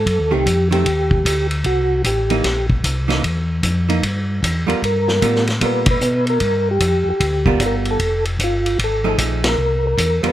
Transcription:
0.00 0.34 A4 medium
0.06 0.19 F#2 medium
0.06 kick soft
0.06 ride soft
0.20 0.33 D#2 medium
0.31 0.45 C2 medium
0.31 0.44 D#3 medium
0.31 0.44 A3 medium
0.31 0.45 C4 medium
0.31 0.68 G4 medium
0.46 0.84 F2 medium
0.46 kick soft
0.46 hi-hat pedal soft
0.46 ride medium
0.71 0.84 D#3 medium
0.71 0.84 A3 medium
0.71 0.85 C4 medium
0.71 1.47 G4 medium
0.71 ride soft
0.86 1.24 D#2 medium
0.86 kick soft
0.86 ride medium
1.11 kick medium
1.25 1.64 D2 medium
1.25 kick soft
1.25 hi-hat pedal medium
1.25 ride medium
1.51 ride soft
1.64 2.03 C2 medium
1.64 2.02 F#4 medium
1.64 kick soft
1.64 ride soft
2.04 2.43 A1 medium
2.04 2.66 G4 medium
2.04 kick soft
2.04 hi-hat pedal medium
2.04 ride medium
2.30 2.43 E3 medium
2.30 2.43 A#3 medium
2.30 2.43 D#4 medium
2.30 ride soft
2.44 2.82 A#1 medium
2.44 kick soft
2.44 snare soft
2.44 ride medium
2.70 kick medium
2.84 3.22 C2 medium
2.84 kick soft
2.84 hi-hat pedal medium
2.84 ride medium
3.08 3.21 E3 medium
3.08 3.22 A#3 medium
3.08 3.22 D#4 medium
3.08 snare soft
3.08 ride soft
3.23 3.61 E2 medium
3.23 kick soft
3.23 ride medium
3.63 4.02 F2 medium
3.63 kick soft
3.63 hi-hat pedal medium
3.63 ride medium
3.89 4.01 E3 medium
3.89 4.01 A#3 medium
3.89 4.02 D#4 medium
3.89 ride soft
4.03 4.41 G2 medium
4.03 kick soft
4.03 ride medium
4.43 4.66 E2 medium
4.43 kick soft
4.43 hi-hat pedal medium
4.43 ride medium
4.67 4.75 E2 soft
4.67 4.80 G3 medium
4.67 4.80 B3 medium
4.67 4.80 F4 medium
4.67 4.81 A#4 medium
4.67 ride soft
4.82 5.21 G2 medium
4.82 5.44 A#4 loud
4.82 kick soft
4.82 ride soft
5.08 snare soft
5.22 5.60 A2 medium
5.22 5.44 G3 medium
5.22 5.45 B3 medium
5.22 5.45 F4 medium
5.22 5.45 A#4 medium
5.22 kick soft
5.22 hi-hat pedal soft
5.22 ride medium
5.35 snare soft
5.47 snare soft
5.47 ride soft
5.61 5.99 A#2 medium
5.61 5.84 G3 medium
5.61 5.84 B3 medium
5.61 5.84 F4 soft
5.61 5.85 A#4 medium
5.61 kick soft
5.61 ride medium
5.66 5.87 B4 medium
5.86 kick medium
5.86 ride medium
5.91 6.26 B4 loud
6.01 6.39 B2 medium
6.01 hi-hat pedal medium
6.27 6.69 A#4 loud
6.27 ride soft
6.40 6.79 G2 medium
6.40 kick soft
6.40 ride medium
6.71 7.09 G4 loud
6.80 7.04 F2 medium
6.80 kick soft
6.80 hi-hat pedal medium
6.80 ride medium
7.06 7.13 F2 soft
7.10 7.63 G4 medium
7.20 7.58 D2 medium
7.20 kick soft
7.20 ride medium
7.46 7.96 G3 medium
7.46 7.97 B3 medium
7.46 7.97 F4 medium
7.46 7.97 A#4 medium
7.46 kick medium
7.60 7.98 G1 medium
7.60 kick soft
7.60 hi-hat pedal medium
7.60 ride medium
7.66 7.76 A#4 medium
7.85 ride soft
7.91 8.25 A4 medium
7.99 8.37 F1 medium
7.99 kick soft
7.99 ride medium
8.25 ride soft
8.39 8.77 G1 medium
8.39 kick soft
8.39 hi-hat pedal medium
8.39 ride medium
8.44 8.78 F4 medium
8.66 ride soft
8.78 9.17 G#1 medium
8.78 kick soft
8.78 ride medium
8.84 9.18 A4 medium
9.04 9.55 F3 medium
9.04 9.55 A3 medium
9.04 9.55 D#4 medium
9.04 9.55 G#4 medium
9.18 9.56 A#1 medium
9.18 kick soft
9.18 hi-hat pedal medium
9.18 ride medium
9.44 9.86 A#4 medium
9.44 snare medium
9.44 ride medium
9.57 9.96 C2 medium
9.87 10.22 A#4 medium
9.97 10.21 E2 medium
9.97 kick soft
9.97 hi-hat pedal medium
9.97 ride medium
10.23 10.30 E2 soft
10.23 10.32 G3 medium
10.23 10.32 B3 medium
10.23 10.32 F4 medium
10.23 10.32 A#4 medium
10.23 ride soft
10.28 10.32 B4 medium

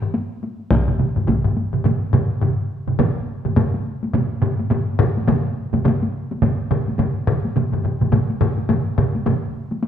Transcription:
0.02 taiko low-mid medium
0.02 taiko high soft
0.14 taiko high medium
0.31 taiko high soft
0.43 taiko high medium
0.60 taiko high soft
0.71 taiko loud
0.71 taiko low-mid medium
0.71 taiko mid medium
0.71 taiko high medium
0.88 taiko low-mid medium
0.88 taiko mid medium
0.88 taiko high soft
0.99 taiko low-mid medium
0.99 taiko mid medium
0.99 taiko high medium
1.16 taiko low-mid medium
1.16 taiko mid medium
1.16 taiko high soft
1.27 taiko medium
1.27 taiko low-mid medium
1.27 taiko mid medium
1.27 taiko high medium
1.44 taiko low-mid medium
1.44 taiko mid medium
1.57 taiko high medium
1.73 taiko low-mid medium
1.73 taiko mid medium
1.73 taiko high soft
1.84 taiko low-mid medium
1.84 taiko mid loud
1.84 taiko high medium
2.03 taiko high soft
2.13 taiko low-mid loud
2.13 taiko mid loud
2.13 taiko high medium
2.32 taiko high soft
2.41 taiko low-mid medium
2.41 taiko mid loud
2.88 taiko low-mid medium
2.88 taiko mid medium
2.99 taiko low-mid loud
2.99 taiko mid loud
2.99 taiko high medium
3.45 taiko low-mid medium
3.45 taiko mid medium
3.45 taiko high medium
3.56 taiko low-mid loud
3.56 taiko mid loud
3.56 taiko high medium
3.74 taiko high medium
4.03 taiko high medium
4.13 taiko low-mid medium
4.13 taiko mid loud
4.13 taiko high medium
4.42 taiko low-mid medium
4.42 taiko mid loud
4.59 taiko high medium
4.70 taiko low-mid medium
4.70 taiko mid loud
4.70 taiko high medium
4.99 taiko low-mid loud
4.99 taiko mid loud
5.17 taiko high medium
5.28 taiko low-mid loud
5.28 taiko mid loud
5.28 taiko high medium
5.73 taiko low-mid medium
5.73 taiko mid medium
5.73 taiko high medium
5.85 taiko low-mid loud
5.85 taiko mid loud
5.85 taiko high medium
6.03 taiko high medium
6.31 taiko high medium
6.42 taiko low-mid medium
6.42 taiko mid loud
6.42 taiko high medium
6.71 taiko low-mid loud
6.71 taiko mid loud
6.88 taiko high medium
6.99 taiko low-mid medium
6.99 taiko mid loud
6.99 taiko high medium
7.27 taiko low-mid loud
7.27 taiko mid loud
7.45 taiko high medium
7.56 taiko low-mid medium
7.56 taiko mid medium
7.56 taiko high medium
7.73 taiko low-mid medium
7.73 taiko mid medium
7.84 taiko low-mid medium
7.84 taiko mid medium
8.01 taiko low-mid medium
8.01 taiko mid medium
8.01 taiko high soft
8.12 taiko low-mid loud
8.12 taiko mid loud
8.12 taiko high medium
8.30 taiko high medium
8.41 taiko low-mid loud
8.41 taiko mid loud
8.58 taiko high medium
8.69 taiko low-mid loud
8.69 taiko mid loud
8.69 taiko high medium
8.98 taiko low-mid loud
8.98 taiko mid loud
9.15 taiko high medium
9.26 taiko low-mid loud
9.26 taiko mid loud
9.26 taiko high medium
9.71 taiko high medium
9.83 taiko high medium

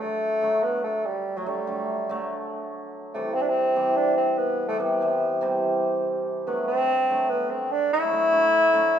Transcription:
0.00 0.40 D3 medium
0.00 0.41 F#3 medium
0.00 0.11 A3 medium
0.00 0.64 A3 loud
0.41 1.45 D3 medium
0.41 1.35 F#3 medium
0.41 0.84 A3 medium
0.63 0.83 B3 medium
0.84 1.07 A3 medium
1.06 1.39 G3 medium
1.37 1.42 F#3 medium
1.37 1.50 F#3 medium
1.37 1.42 A3 medium
1.46 1.66 D3 medium
1.46 1.66 F#3 medium
1.46 2.31 G3 medium
1.46 1.58 A3 medium
1.67 2.08 D3 medium
1.67 2.09 F#3 medium
1.67 1.89 A3 medium
2.09 3.19 D3 medium
2.09 3.19 F#3 medium
2.09 2.52 A3 medium
3.14 3.75 C3 medium
3.14 3.75 E3 medium
3.14 3.75 G3 medium
3.14 3.36 A3 medium
3.34 3.43 C4 loud
3.42 3.51 D4 medium
3.49 3.98 C4 medium
3.76 4.78 C3 medium
3.76 4.67 E3 medium
3.76 4.69 G3 medium
3.96 4.17 D4 loud
4.17 4.39 C4 medium
4.38 4.67 B3 medium
4.68 4.75 E3 medium
4.68 4.75 G3 medium
4.68 4.78 A3 medium
4.79 5.00 C3 medium
4.79 5.00 E3 medium
4.79 5.01 G3 medium
4.79 5.59 B3 medium
5.01 5.40 C3 medium
5.01 5.41 E3 medium
5.01 5.42 G3 medium
5.41 6.52 C3 medium
5.41 6.52 E3 medium
5.41 6.52 G3 medium
6.47 7.09 D3 medium
6.47 7.09 F#3 medium
6.47 6.79 A3 medium
6.47 6.66 B3 medium
6.67 7.31 C4 loud
7.10 8.09 D3 medium
7.10 8.00 F#3 medium
7.10 7.51 A3 medium
7.30 7.52 B3 loud
7.51 7.73 C4 medium
7.72 7.92 D4 loud
7.93 8.99 E4 loud
8.02 8.07 F#3 medium
8.02 8.08 A3 medium
8.11 8.31 D3 medium
8.11 8.32 F#3 medium
8.11 8.23 A3 medium
8.32 8.72 D3 medium
8.32 8.72 F#3 medium
8.32 8.53 A3 medium
8.73 8.99 D3 medium
8.73 8.99 F#3 medium
8.73 8.99 A3 loud

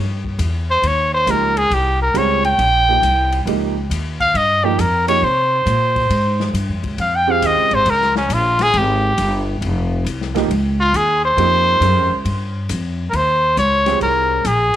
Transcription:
0.00 0.38 G2 medium
0.25 kick soft
0.39 0.81 E2 medium
0.39 hi-hat pedal soft
0.39 ride medium
0.71 0.88 C5 medium
0.82 1.25 D#2 medium
0.82 ride medium
0.87 1.14 C#5 medium
1.14 1.32 C5 medium
1.27 1.70 C#2 medium
1.27 1.53 F3 medium
1.27 1.53 A#3 medium
1.27 1.54 D#4 soft
1.27 1.54 G4 medium
1.27 1.59 A#4 medium
1.27 hi-hat pedal medium
1.27 ride medium
1.57 1.75 G#4 medium
1.57 ride soft
1.70 2.13 C2 medium
1.70 2.01 G4 medium
1.70 ride medium
2.02 2.19 A#4 medium
2.14 2.57 C#2 medium
2.14 2.41 G3 medium
2.14 2.42 C4 medium
2.14 2.42 F4 medium
2.14 2.42 G#4 medium
2.14 2.45 C#5 medium
2.14 hi-hat pedal soft
2.14 ride medium
2.44 3.43 G5 loud
2.44 ride soft
2.58 3.01 A#1 medium
2.58 ride medium
2.88 3.01 F3 medium
2.88 3.02 A#3 soft
2.88 3.02 D#4 medium
2.88 3.02 G4 medium
3.02 3.45 C2 medium
3.02 hi-hat pedal medium
3.02 ride medium
3.32 ride soft
3.45 3.89 C#2 medium
3.45 3.73 F3 medium
3.45 3.73 A#3 medium
3.45 3.74 D#4 medium
3.45 3.74 G4 medium
3.45 ride medium
3.90 4.33 D#2 medium
3.90 hi-hat pedal medium
3.90 ride medium
4.20 4.38 F5 loud
4.20 kick medium
4.20 ride soft
4.34 4.77 G2 medium
4.34 4.66 D#5 loud
4.34 ride medium
4.63 4.77 F3 medium
4.63 4.77 A#3 medium
4.63 4.77 D#4 medium
4.63 4.81 G4 medium
4.63 4.78 G4 medium
4.78 5.21 F2 medium
4.78 5.08 A#4 medium
4.78 hi-hat pedal medium
4.78 ride medium
5.07 5.21 F3 medium
5.07 5.21 A#3 medium
5.07 5.21 D#4 medium
5.07 5.22 G4 medium
5.07 5.26 C#5 loud
5.07 ride medium
5.22 5.65 C3 medium
5.22 6.55 C5 medium
5.66 6.09 A#2 medium
5.66 hi-hat pedal medium
5.66 ride medium
5.96 kick medium
5.96 ride soft
6.10 6.53 G#2 medium
6.10 ride medium
6.40 snare soft
6.53 6.70 G2 medium
6.53 hi-hat pedal medium
6.53 ride medium
6.68 6.82 F2 medium
6.83 6.97 C#2 medium
6.83 kick medium
6.83 ride soft
6.98 7.41 F2 medium
6.98 7.17 F5 medium
6.98 ride medium
7.16 7.32 G5 loud
7.27 7.83 C4 medium
7.27 7.84 F4 medium
7.27 7.83 G4 medium
7.27 7.84 G#4 medium
7.27 7.48 F5 medium
7.42 7.57 D#2 medium
7.42 hi-hat pedal medium
7.42 ride medium
7.46 7.76 D#5 medium
7.57 7.70 C#2 medium
7.71 7.85 G#1 medium
7.71 7.91 C5 medium
7.71 ride soft
7.86 8.28 C#2 medium
7.86 ride medium
7.90 8.16 A#4 loud
8.01 snare soft
8.16 8.35 C#4 medium
8.16 snare soft
8.29 8.72 A#1 medium
8.29 hi-hat pedal soft
8.29 ride medium
8.33 8.63 F4 medium
8.59 8.79 G#4 loud
8.59 snare soft
8.59 ride medium
8.74 9.16 G#1 medium
8.74 9.49 G4 medium
8.74 ride medium
9.18 9.60 G1 medium
9.18 hi-hat pedal soft
9.18 ride medium
9.61 10.04 F1 medium
9.61 ride medium
10.04 10.48 C2 medium
10.04 hi-hat pedal medium
10.04 ride medium
10.21 snare soft
10.35 10.48 F3 medium
10.35 10.48 A#3 medium
10.35 10.48 D#4 medium
10.35 10.49 G4 medium
10.35 snare soft
10.35 ride soft
10.48 10.91 C#2 medium
10.48 ride medium
10.80 10.98 F4 medium
10.93 11.36 D#2 loud
10.93 11.24 G#4 medium
10.93 hi-hat pedal medium
10.93 ride medium
11.25 12.22 C5 loud
11.37 11.79 F2 medium
11.37 11.79 F3 medium
11.37 11.80 A#3 medium
11.37 11.80 D#4 medium
11.37 11.80 G4 medium
11.37 ride medium
11.80 11.96 F#2 medium
11.80 12.07 G#3 medium
11.80 12.08 C#4 medium
11.80 12.08 G4 medium
11.80 12.08 A#4 medium
11.80 hi-hat pedal medium
11.80 ride medium
11.96 12.09 F2 medium
12.10 12.24 C#2 medium
12.25 12.67 G2 medium
12.25 ride medium
12.69 13.12 F2 medium
12.69 hi-hat pedal medium
12.69 ride medium
13.10 13.55 D#2 medium
13.10 13.17 A#4 medium
13.10 ride medium
13.16 13.58 C5 loud
13.57 13.99 C#2 medium
13.57 13.98 C#5 medium
13.57 hi-hat pedal medium
13.57 ride medium
13.86 14.42 C4 medium
13.86 14.42 F4 medium
13.86 14.41 G4 medium
13.86 14.43 G#4 medium
13.86 snare soft
13.86 ride soft
14.01 14.43 C2 medium
14.01 14.48 A#4 medium
14.01 ride medium
14.44 14.72 A#1 medium
14.44 14.76 G#4 medium
14.44 hi-hat pedal medium
14.44 ride medium

